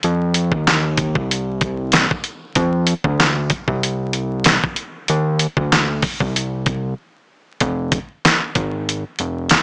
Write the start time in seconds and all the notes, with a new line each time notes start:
0.03 F2, closed hi-hat
0.34 closed hi-hat
0.52 D#2, kick
0.67 snare, clap, closed hi-hat
0.97 kick, closed hi-hat
1.15 C2, kick
1.31 closed hi-hat
1.61 kick, closed hi-hat
1.92 snare, clap, closed hi-hat
2.11 kick
2.24 closed hi-hat
2.55 F2, kick, closed hi-hat
2.87 closed hi-hat
3.04 D2, kick
3.20 snare, clap, closed hi-hat
3.50 kick, closed hi-hat
3.68 C2, kick
3.83 closed hi-hat
4.13 closed hi-hat
4.44 snare, clap, closed hi-hat
4.64 kick
4.76 closed hi-hat
5.08 D#2, closed hi-hat
5.39 closed hi-hat
5.57 D2, kick
5.72 snare, clap, closed hi-hat
6.02 kick, open hi-hat
6.20 C2, kick
6.36 closed hi-hat
6.66 kick, closed hi-hat
7.60 F1, kick, closed hi-hat
7.92 kick, closed hi-hat
8.25 snare, clap, closed hi-hat
8.55 G#1, kick, closed hi-hat
8.89 closed hi-hat
9.19 F1, closed hi-hat
9.49 snare, clap, closed hi-hat